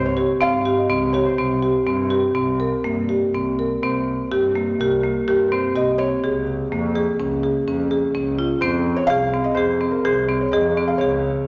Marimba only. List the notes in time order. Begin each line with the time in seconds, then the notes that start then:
0.17 G4
0.41 C4
0.65 G4
0.90 C4
1.14 G4
1.38 C4
1.63 G4
1.87 C4
2.10 G4
2.35 C4
2.60 A#4
2.84 A#3
3.09 G4
3.35 C4
3.59 A#4
3.83 C4
4.32 G4
4.56 A#3
4.81 G4
5.04 A#3
5.28 G4
5.52 C4
5.75 G4
5.99 C4
6.24 G#4
6.72 A#3
6.96 G#4
7.20 C#4
7.43 G#4
7.68 C#4
7.91 G#4
8.15 C#4
8.39 F4
8.62 C4
9.10 G#4
9.34 C4
9.57 G#4
9.81 C4
10.05 G#4
10.29 C4
10.53 G#4
10.77 C4
11.01 G#4